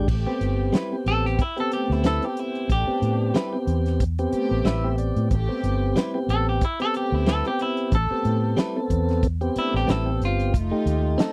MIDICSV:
0, 0, Header, 1, 8, 480
1, 0, Start_track
1, 0, Key_signature, 0, "minor"
1, 0, Tempo, 653595
1, 59, Time_signature, 4, 2, 24, 8
1, 8319, End_track
2, 0, Start_track
2, 0, Title_t, "Clean electric guitar"
2, 0, Program_c, 0, 27
2, 791, Note_on_c, 0, 69, 98
2, 915, Note_off_c, 0, 69, 0
2, 927, Note_on_c, 0, 67, 79
2, 1023, Note_off_c, 0, 67, 0
2, 1040, Note_on_c, 0, 64, 79
2, 1160, Note_off_c, 0, 64, 0
2, 1177, Note_on_c, 0, 69, 98
2, 1268, Note_off_c, 0, 69, 0
2, 1273, Note_on_c, 0, 67, 81
2, 1413, Note_off_c, 0, 67, 0
2, 1413, Note_on_c, 0, 64, 82
2, 1506, Note_off_c, 0, 64, 0
2, 1516, Note_on_c, 0, 69, 100
2, 1650, Note_off_c, 0, 69, 0
2, 1650, Note_on_c, 0, 67, 79
2, 1758, Note_off_c, 0, 67, 0
2, 1758, Note_on_c, 0, 64, 81
2, 1981, Note_off_c, 0, 64, 0
2, 1997, Note_on_c, 0, 67, 103
2, 2919, Note_off_c, 0, 67, 0
2, 4629, Note_on_c, 0, 69, 99
2, 4754, Note_off_c, 0, 69, 0
2, 4767, Note_on_c, 0, 67, 81
2, 4862, Note_off_c, 0, 67, 0
2, 4881, Note_on_c, 0, 64, 86
2, 5000, Note_off_c, 0, 64, 0
2, 5007, Note_on_c, 0, 69, 110
2, 5103, Note_off_c, 0, 69, 0
2, 5116, Note_on_c, 0, 67, 75
2, 5246, Note_off_c, 0, 67, 0
2, 5246, Note_on_c, 0, 64, 90
2, 5342, Note_off_c, 0, 64, 0
2, 5351, Note_on_c, 0, 69, 91
2, 5475, Note_off_c, 0, 69, 0
2, 5490, Note_on_c, 0, 67, 104
2, 5584, Note_off_c, 0, 67, 0
2, 5598, Note_on_c, 0, 64, 76
2, 5821, Note_off_c, 0, 64, 0
2, 5837, Note_on_c, 0, 69, 102
2, 6759, Note_off_c, 0, 69, 0
2, 7040, Note_on_c, 0, 64, 81
2, 7159, Note_off_c, 0, 64, 0
2, 7172, Note_on_c, 0, 67, 82
2, 7273, Note_off_c, 0, 67, 0
2, 7273, Note_on_c, 0, 69, 85
2, 7499, Note_off_c, 0, 69, 0
2, 7528, Note_on_c, 0, 65, 87
2, 7746, Note_off_c, 0, 65, 0
2, 8319, End_track
3, 0, Start_track
3, 0, Title_t, "Clean electric guitar"
3, 0, Program_c, 1, 27
3, 534, Note_on_c, 1, 55, 77
3, 540, Note_on_c, 1, 60, 84
3, 546, Note_on_c, 1, 64, 82
3, 551, Note_on_c, 1, 71, 95
3, 692, Note_off_c, 1, 55, 0
3, 695, Note_off_c, 1, 60, 0
3, 698, Note_off_c, 1, 64, 0
3, 700, Note_off_c, 1, 71, 0
3, 1496, Note_on_c, 1, 55, 64
3, 1502, Note_on_c, 1, 60, 69
3, 1509, Note_on_c, 1, 64, 82
3, 1514, Note_on_c, 1, 71, 72
3, 1653, Note_off_c, 1, 55, 0
3, 1656, Note_off_c, 1, 60, 0
3, 1659, Note_off_c, 1, 64, 0
3, 1662, Note_off_c, 1, 71, 0
3, 2455, Note_on_c, 1, 55, 72
3, 2462, Note_on_c, 1, 60, 73
3, 2467, Note_on_c, 1, 64, 73
3, 2473, Note_on_c, 1, 71, 88
3, 2612, Note_off_c, 1, 55, 0
3, 2615, Note_off_c, 1, 60, 0
3, 2618, Note_off_c, 1, 64, 0
3, 2621, Note_off_c, 1, 71, 0
3, 3414, Note_on_c, 1, 55, 84
3, 3420, Note_on_c, 1, 60, 89
3, 3426, Note_on_c, 1, 64, 85
3, 3431, Note_on_c, 1, 71, 87
3, 3571, Note_off_c, 1, 55, 0
3, 3574, Note_off_c, 1, 60, 0
3, 3578, Note_off_c, 1, 64, 0
3, 3580, Note_off_c, 1, 71, 0
3, 4376, Note_on_c, 1, 55, 79
3, 4382, Note_on_c, 1, 60, 92
3, 4387, Note_on_c, 1, 64, 83
3, 4393, Note_on_c, 1, 71, 99
3, 4532, Note_off_c, 1, 55, 0
3, 4535, Note_off_c, 1, 60, 0
3, 4538, Note_off_c, 1, 64, 0
3, 4541, Note_off_c, 1, 71, 0
3, 5335, Note_on_c, 1, 55, 70
3, 5341, Note_on_c, 1, 60, 71
3, 5347, Note_on_c, 1, 64, 73
3, 5352, Note_on_c, 1, 71, 86
3, 5492, Note_off_c, 1, 55, 0
3, 5495, Note_off_c, 1, 60, 0
3, 5498, Note_off_c, 1, 64, 0
3, 5500, Note_off_c, 1, 71, 0
3, 6293, Note_on_c, 1, 55, 80
3, 6299, Note_on_c, 1, 60, 79
3, 6305, Note_on_c, 1, 64, 84
3, 6309, Note_on_c, 1, 71, 90
3, 6451, Note_off_c, 1, 55, 0
3, 6454, Note_off_c, 1, 60, 0
3, 6457, Note_off_c, 1, 64, 0
3, 6459, Note_off_c, 1, 71, 0
3, 7251, Note_on_c, 1, 55, 68
3, 7256, Note_on_c, 1, 60, 69
3, 7263, Note_on_c, 1, 64, 81
3, 7267, Note_on_c, 1, 71, 73
3, 7410, Note_off_c, 1, 55, 0
3, 7412, Note_off_c, 1, 60, 0
3, 7415, Note_off_c, 1, 64, 0
3, 7418, Note_off_c, 1, 71, 0
3, 8210, Note_on_c, 1, 60, 80
3, 8220, Note_on_c, 1, 63, 85
3, 8227, Note_on_c, 1, 69, 94
3, 8319, Note_off_c, 1, 60, 0
3, 8319, Note_off_c, 1, 63, 0
3, 8319, Note_off_c, 1, 69, 0
3, 8319, End_track
4, 0, Start_track
4, 0, Title_t, "String section"
4, 0, Program_c, 2, 48
4, 59, Note_on_c, 2, 57, 77
4, 68, Note_on_c, 2, 67, 92
4, 539, Note_off_c, 2, 57, 0
4, 543, Note_off_c, 2, 67, 0
4, 1256, Note_on_c, 2, 57, 62
4, 1263, Note_on_c, 2, 69, 75
4, 1632, Note_off_c, 2, 57, 0
4, 1635, Note_off_c, 2, 69, 0
4, 1978, Note_on_c, 2, 57, 70
4, 1984, Note_on_c, 2, 62, 83
4, 2458, Note_off_c, 2, 57, 0
4, 2462, Note_off_c, 2, 62, 0
4, 3176, Note_on_c, 2, 57, 83
4, 3178, Note_on_c, 2, 67, 99
4, 3551, Note_off_c, 2, 57, 0
4, 3552, Note_off_c, 2, 67, 0
4, 3899, Note_on_c, 2, 57, 85
4, 3904, Note_on_c, 2, 67, 99
4, 4379, Note_off_c, 2, 57, 0
4, 4381, Note_off_c, 2, 67, 0
4, 5101, Note_on_c, 2, 57, 70
4, 5103, Note_on_c, 2, 67, 89
4, 5474, Note_off_c, 2, 57, 0
4, 5474, Note_off_c, 2, 67, 0
4, 5820, Note_on_c, 2, 57, 71
4, 5824, Note_on_c, 2, 69, 89
4, 6299, Note_off_c, 2, 57, 0
4, 6301, Note_off_c, 2, 69, 0
4, 7017, Note_on_c, 2, 57, 61
4, 7025, Note_on_c, 2, 62, 80
4, 7392, Note_off_c, 2, 57, 0
4, 7396, Note_off_c, 2, 62, 0
4, 7733, Note_on_c, 2, 57, 74
4, 7740, Note_on_c, 2, 63, 67
4, 7743, Note_on_c, 2, 65, 84
4, 8216, Note_off_c, 2, 57, 0
4, 8219, Note_off_c, 2, 63, 0
4, 8220, Note_off_c, 2, 65, 0
4, 8319, End_track
5, 0, Start_track
5, 0, Title_t, "Tonewheel organ"
5, 0, Program_c, 3, 16
5, 194, Note_on_c, 3, 59, 82
5, 195, Note_on_c, 3, 67, 89
5, 196, Note_on_c, 3, 60, 69
5, 570, Note_off_c, 3, 59, 0
5, 570, Note_off_c, 3, 60, 0
5, 570, Note_off_c, 3, 67, 0
5, 679, Note_on_c, 3, 59, 76
5, 679, Note_on_c, 3, 60, 61
5, 679, Note_on_c, 3, 67, 82
5, 1052, Note_off_c, 3, 59, 0
5, 1052, Note_off_c, 3, 60, 0
5, 1052, Note_off_c, 3, 67, 0
5, 1149, Note_on_c, 3, 59, 81
5, 1150, Note_on_c, 3, 60, 73
5, 1152, Note_on_c, 3, 67, 85
5, 1527, Note_off_c, 3, 59, 0
5, 1527, Note_off_c, 3, 60, 0
5, 1528, Note_off_c, 3, 67, 0
5, 1631, Note_on_c, 3, 59, 61
5, 1632, Note_on_c, 3, 60, 60
5, 1635, Note_on_c, 3, 67, 75
5, 2007, Note_off_c, 3, 59, 0
5, 2008, Note_off_c, 3, 60, 0
5, 2010, Note_off_c, 3, 67, 0
5, 2110, Note_on_c, 3, 60, 61
5, 2112, Note_on_c, 3, 59, 70
5, 2112, Note_on_c, 3, 67, 75
5, 2487, Note_off_c, 3, 60, 0
5, 2488, Note_off_c, 3, 59, 0
5, 2488, Note_off_c, 3, 67, 0
5, 2590, Note_on_c, 3, 59, 85
5, 2590, Note_on_c, 3, 67, 93
5, 2593, Note_on_c, 3, 60, 83
5, 2967, Note_off_c, 3, 59, 0
5, 2967, Note_off_c, 3, 67, 0
5, 2969, Note_off_c, 3, 60, 0
5, 3076, Note_on_c, 3, 67, 110
5, 3077, Note_on_c, 3, 60, 88
5, 3078, Note_on_c, 3, 59, 94
5, 3418, Note_on_c, 3, 76, 67
5, 3450, Note_off_c, 3, 67, 0
5, 3451, Note_off_c, 3, 59, 0
5, 3451, Note_off_c, 3, 60, 0
5, 3554, Note_on_c, 3, 59, 84
5, 3556, Note_on_c, 3, 67, 89
5, 3558, Note_on_c, 3, 60, 76
5, 3641, Note_off_c, 3, 76, 0
5, 3660, Note_on_c, 3, 74, 66
5, 3882, Note_off_c, 3, 74, 0
5, 3929, Note_off_c, 3, 59, 0
5, 3930, Note_off_c, 3, 67, 0
5, 3931, Note_off_c, 3, 60, 0
5, 4028, Note_on_c, 3, 59, 85
5, 4030, Note_on_c, 3, 60, 84
5, 4032, Note_on_c, 3, 67, 93
5, 4406, Note_off_c, 3, 59, 0
5, 4407, Note_off_c, 3, 60, 0
5, 4408, Note_off_c, 3, 67, 0
5, 4511, Note_on_c, 3, 59, 74
5, 4511, Note_on_c, 3, 60, 72
5, 4515, Note_on_c, 3, 67, 78
5, 4887, Note_off_c, 3, 59, 0
5, 4888, Note_off_c, 3, 60, 0
5, 4889, Note_off_c, 3, 67, 0
5, 4991, Note_on_c, 3, 59, 87
5, 4991, Note_on_c, 3, 67, 87
5, 4992, Note_on_c, 3, 60, 77
5, 5367, Note_off_c, 3, 59, 0
5, 5367, Note_off_c, 3, 67, 0
5, 5368, Note_off_c, 3, 60, 0
5, 5474, Note_on_c, 3, 59, 70
5, 5475, Note_on_c, 3, 60, 63
5, 5475, Note_on_c, 3, 67, 79
5, 5849, Note_off_c, 3, 59, 0
5, 5849, Note_off_c, 3, 60, 0
5, 5849, Note_off_c, 3, 67, 0
5, 5952, Note_on_c, 3, 60, 65
5, 5953, Note_on_c, 3, 59, 69
5, 5953, Note_on_c, 3, 67, 82
5, 6328, Note_off_c, 3, 59, 0
5, 6328, Note_off_c, 3, 60, 0
5, 6328, Note_off_c, 3, 67, 0
5, 6436, Note_on_c, 3, 59, 82
5, 6437, Note_on_c, 3, 60, 82
5, 6437, Note_on_c, 3, 69, 100
5, 6810, Note_off_c, 3, 59, 0
5, 6810, Note_off_c, 3, 60, 0
5, 6810, Note_off_c, 3, 69, 0
5, 6911, Note_on_c, 3, 67, 90
5, 6912, Note_on_c, 3, 59, 78
5, 6915, Note_on_c, 3, 60, 76
5, 7287, Note_off_c, 3, 67, 0
5, 7288, Note_off_c, 3, 59, 0
5, 7289, Note_off_c, 3, 60, 0
5, 7386, Note_on_c, 3, 59, 65
5, 7386, Note_on_c, 3, 67, 77
5, 7388, Note_on_c, 3, 60, 62
5, 7735, Note_off_c, 3, 59, 0
5, 7735, Note_off_c, 3, 67, 0
5, 7736, Note_off_c, 3, 60, 0
5, 7869, Note_on_c, 3, 67, 89
5, 7870, Note_on_c, 3, 57, 87
5, 7870, Note_on_c, 3, 63, 75
5, 8246, Note_off_c, 3, 67, 0
5, 8247, Note_off_c, 3, 57, 0
5, 8247, Note_off_c, 3, 63, 0
5, 8319, End_track
6, 0, Start_track
6, 0, Title_t, "Fingered electric bass"
6, 0, Program_c, 4, 33
6, 58, Note_on_c, 4, 33, 92
6, 178, Note_off_c, 4, 33, 0
6, 299, Note_on_c, 4, 31, 78
6, 513, Note_off_c, 4, 31, 0
6, 779, Note_on_c, 4, 33, 95
6, 993, Note_off_c, 4, 33, 0
6, 1393, Note_on_c, 4, 38, 83
6, 1607, Note_off_c, 4, 38, 0
6, 1978, Note_on_c, 4, 33, 103
6, 2098, Note_off_c, 4, 33, 0
6, 2217, Note_on_c, 4, 45, 83
6, 2432, Note_off_c, 4, 45, 0
6, 2696, Note_on_c, 4, 40, 95
6, 3125, Note_off_c, 4, 40, 0
6, 3313, Note_on_c, 4, 33, 84
6, 3407, Note_off_c, 4, 33, 0
6, 3415, Note_on_c, 4, 33, 92
6, 3750, Note_off_c, 4, 33, 0
6, 3790, Note_on_c, 4, 45, 83
6, 3898, Note_on_c, 4, 33, 97
6, 3910, Note_off_c, 4, 45, 0
6, 4018, Note_off_c, 4, 33, 0
6, 4138, Note_on_c, 4, 31, 85
6, 4352, Note_off_c, 4, 31, 0
6, 4616, Note_on_c, 4, 33, 101
6, 4831, Note_off_c, 4, 33, 0
6, 5230, Note_on_c, 4, 38, 95
6, 5445, Note_off_c, 4, 38, 0
6, 5817, Note_on_c, 4, 33, 98
6, 5937, Note_off_c, 4, 33, 0
6, 6059, Note_on_c, 4, 45, 88
6, 6273, Note_off_c, 4, 45, 0
6, 6536, Note_on_c, 4, 40, 94
6, 6965, Note_off_c, 4, 40, 0
6, 7154, Note_on_c, 4, 33, 84
6, 7247, Note_off_c, 4, 33, 0
6, 7261, Note_on_c, 4, 33, 85
6, 7476, Note_off_c, 4, 33, 0
6, 7499, Note_on_c, 4, 31, 82
6, 7740, Note_off_c, 4, 31, 0
6, 7740, Note_on_c, 4, 29, 100
6, 7859, Note_off_c, 4, 29, 0
6, 7974, Note_on_c, 4, 39, 86
6, 8190, Note_off_c, 4, 39, 0
6, 8319, End_track
7, 0, Start_track
7, 0, Title_t, "Muted fingered electric bass strokes"
7, 3178, Note_on_c, 9, 29, 38
7, 3251, Note_off_c, 9, 29, 0
7, 5956, Note_on_c, 9, 29, 36
7, 6029, Note_off_c, 9, 29, 0
7, 7021, Note_on_c, 9, 29, 39
7, 7095, Note_off_c, 9, 29, 0
7, 8319, End_track
8, 0, Start_track
8, 0, Title_t, "Drums"
8, 59, Note_on_c, 9, 36, 96
8, 62, Note_on_c, 9, 49, 89
8, 133, Note_off_c, 9, 36, 0
8, 135, Note_off_c, 9, 49, 0
8, 301, Note_on_c, 9, 42, 55
8, 375, Note_off_c, 9, 42, 0
8, 541, Note_on_c, 9, 42, 83
8, 550, Note_on_c, 9, 38, 105
8, 614, Note_off_c, 9, 42, 0
8, 623, Note_off_c, 9, 38, 0
8, 781, Note_on_c, 9, 42, 59
8, 854, Note_off_c, 9, 42, 0
8, 924, Note_on_c, 9, 38, 30
8, 997, Note_off_c, 9, 38, 0
8, 1019, Note_on_c, 9, 36, 107
8, 1020, Note_on_c, 9, 42, 77
8, 1093, Note_off_c, 9, 36, 0
8, 1093, Note_off_c, 9, 42, 0
8, 1156, Note_on_c, 9, 42, 37
8, 1229, Note_off_c, 9, 42, 0
8, 1260, Note_on_c, 9, 42, 56
8, 1333, Note_off_c, 9, 42, 0
8, 1403, Note_on_c, 9, 38, 30
8, 1476, Note_off_c, 9, 38, 0
8, 1497, Note_on_c, 9, 42, 74
8, 1506, Note_on_c, 9, 38, 101
8, 1571, Note_off_c, 9, 42, 0
8, 1580, Note_off_c, 9, 38, 0
8, 1632, Note_on_c, 9, 42, 39
8, 1705, Note_off_c, 9, 42, 0
8, 1739, Note_on_c, 9, 42, 57
8, 1813, Note_off_c, 9, 42, 0
8, 1874, Note_on_c, 9, 42, 36
8, 1947, Note_off_c, 9, 42, 0
8, 1980, Note_on_c, 9, 36, 97
8, 1981, Note_on_c, 9, 42, 74
8, 2053, Note_off_c, 9, 36, 0
8, 2054, Note_off_c, 9, 42, 0
8, 2220, Note_on_c, 9, 42, 55
8, 2294, Note_off_c, 9, 42, 0
8, 2457, Note_on_c, 9, 42, 79
8, 2466, Note_on_c, 9, 38, 110
8, 2531, Note_off_c, 9, 42, 0
8, 2539, Note_off_c, 9, 38, 0
8, 2698, Note_on_c, 9, 42, 61
8, 2772, Note_off_c, 9, 42, 0
8, 2833, Note_on_c, 9, 42, 39
8, 2842, Note_on_c, 9, 38, 29
8, 2906, Note_off_c, 9, 42, 0
8, 2915, Note_off_c, 9, 38, 0
8, 2939, Note_on_c, 9, 36, 102
8, 2939, Note_on_c, 9, 42, 82
8, 3012, Note_off_c, 9, 36, 0
8, 3013, Note_off_c, 9, 42, 0
8, 3073, Note_on_c, 9, 42, 40
8, 3146, Note_off_c, 9, 42, 0
8, 3176, Note_on_c, 9, 42, 64
8, 3249, Note_off_c, 9, 42, 0
8, 3417, Note_on_c, 9, 42, 78
8, 3425, Note_on_c, 9, 38, 96
8, 3490, Note_off_c, 9, 42, 0
8, 3499, Note_off_c, 9, 38, 0
8, 3658, Note_on_c, 9, 42, 64
8, 3731, Note_off_c, 9, 42, 0
8, 3793, Note_on_c, 9, 42, 41
8, 3866, Note_off_c, 9, 42, 0
8, 3898, Note_on_c, 9, 42, 81
8, 3900, Note_on_c, 9, 36, 99
8, 3971, Note_off_c, 9, 42, 0
8, 3973, Note_off_c, 9, 36, 0
8, 4140, Note_on_c, 9, 42, 65
8, 4213, Note_off_c, 9, 42, 0
8, 4378, Note_on_c, 9, 42, 86
8, 4387, Note_on_c, 9, 38, 113
8, 4452, Note_off_c, 9, 42, 0
8, 4461, Note_off_c, 9, 38, 0
8, 4622, Note_on_c, 9, 42, 59
8, 4695, Note_off_c, 9, 42, 0
8, 4856, Note_on_c, 9, 42, 78
8, 4859, Note_on_c, 9, 36, 112
8, 4930, Note_off_c, 9, 42, 0
8, 4932, Note_off_c, 9, 36, 0
8, 4993, Note_on_c, 9, 42, 38
8, 5066, Note_off_c, 9, 42, 0
8, 5098, Note_on_c, 9, 42, 64
8, 5172, Note_off_c, 9, 42, 0
8, 5335, Note_on_c, 9, 42, 78
8, 5344, Note_on_c, 9, 38, 98
8, 5408, Note_off_c, 9, 42, 0
8, 5417, Note_off_c, 9, 38, 0
8, 5471, Note_on_c, 9, 42, 40
8, 5544, Note_off_c, 9, 42, 0
8, 5576, Note_on_c, 9, 42, 62
8, 5650, Note_off_c, 9, 42, 0
8, 5707, Note_on_c, 9, 42, 39
8, 5780, Note_off_c, 9, 42, 0
8, 5814, Note_on_c, 9, 42, 78
8, 5817, Note_on_c, 9, 36, 100
8, 5888, Note_off_c, 9, 42, 0
8, 5890, Note_off_c, 9, 36, 0
8, 6058, Note_on_c, 9, 42, 55
8, 6131, Note_off_c, 9, 42, 0
8, 6295, Note_on_c, 9, 42, 81
8, 6304, Note_on_c, 9, 38, 105
8, 6368, Note_off_c, 9, 42, 0
8, 6377, Note_off_c, 9, 38, 0
8, 6538, Note_on_c, 9, 36, 76
8, 6538, Note_on_c, 9, 42, 60
8, 6611, Note_off_c, 9, 36, 0
8, 6612, Note_off_c, 9, 42, 0
8, 6673, Note_on_c, 9, 42, 32
8, 6681, Note_on_c, 9, 38, 28
8, 6746, Note_off_c, 9, 42, 0
8, 6755, Note_off_c, 9, 38, 0
8, 6777, Note_on_c, 9, 42, 83
8, 6778, Note_on_c, 9, 36, 113
8, 6851, Note_off_c, 9, 42, 0
8, 6852, Note_off_c, 9, 36, 0
8, 6912, Note_on_c, 9, 42, 36
8, 6986, Note_off_c, 9, 42, 0
8, 7019, Note_on_c, 9, 42, 67
8, 7092, Note_off_c, 9, 42, 0
8, 7163, Note_on_c, 9, 38, 32
8, 7236, Note_off_c, 9, 38, 0
8, 7261, Note_on_c, 9, 42, 83
8, 7270, Note_on_c, 9, 38, 114
8, 7334, Note_off_c, 9, 42, 0
8, 7343, Note_off_c, 9, 38, 0
8, 7503, Note_on_c, 9, 42, 60
8, 7512, Note_on_c, 9, 38, 32
8, 7576, Note_off_c, 9, 42, 0
8, 7585, Note_off_c, 9, 38, 0
8, 7635, Note_on_c, 9, 42, 41
8, 7709, Note_off_c, 9, 42, 0
8, 7740, Note_on_c, 9, 36, 109
8, 7743, Note_on_c, 9, 42, 84
8, 7813, Note_off_c, 9, 36, 0
8, 7816, Note_off_c, 9, 42, 0
8, 7981, Note_on_c, 9, 42, 67
8, 8055, Note_off_c, 9, 42, 0
8, 8219, Note_on_c, 9, 42, 84
8, 8228, Note_on_c, 9, 38, 122
8, 8292, Note_off_c, 9, 42, 0
8, 8301, Note_off_c, 9, 38, 0
8, 8319, End_track
0, 0, End_of_file